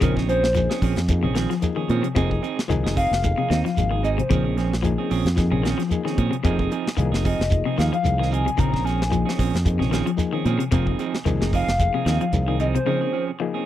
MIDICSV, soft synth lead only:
0, 0, Header, 1, 2, 480
1, 0, Start_track
1, 0, Key_signature, -4, "minor"
1, 0, Tempo, 535236
1, 17, Time_signature, 4, 2, 24, 8
1, 12248, End_track
2, 0, Start_track
2, 0, Title_t, "Soft synth lead"
2, 0, Program_c, 0, 80
2, 25, Note_on_c, 0, 70, 96
2, 131, Note_off_c, 0, 70, 0
2, 255, Note_on_c, 0, 72, 89
2, 703, Note_off_c, 0, 72, 0
2, 2660, Note_on_c, 0, 77, 114
2, 3234, Note_off_c, 0, 77, 0
2, 3287, Note_on_c, 0, 77, 93
2, 3604, Note_off_c, 0, 77, 0
2, 3627, Note_on_c, 0, 75, 94
2, 3684, Note_off_c, 0, 75, 0
2, 3755, Note_on_c, 0, 72, 73
2, 4199, Note_off_c, 0, 72, 0
2, 6515, Note_on_c, 0, 75, 92
2, 6955, Note_off_c, 0, 75, 0
2, 6983, Note_on_c, 0, 77, 88
2, 7041, Note_off_c, 0, 77, 0
2, 7120, Note_on_c, 0, 77, 92
2, 7440, Note_off_c, 0, 77, 0
2, 7470, Note_on_c, 0, 80, 104
2, 7704, Note_on_c, 0, 82, 124
2, 7718, Note_off_c, 0, 80, 0
2, 7940, Note_on_c, 0, 80, 102
2, 7953, Note_off_c, 0, 82, 0
2, 8420, Note_off_c, 0, 80, 0
2, 10356, Note_on_c, 0, 77, 116
2, 10922, Note_off_c, 0, 77, 0
2, 10947, Note_on_c, 0, 77, 91
2, 11272, Note_off_c, 0, 77, 0
2, 11303, Note_on_c, 0, 75, 91
2, 11361, Note_off_c, 0, 75, 0
2, 11434, Note_on_c, 0, 72, 75
2, 11877, Note_off_c, 0, 72, 0
2, 12248, End_track
0, 0, End_of_file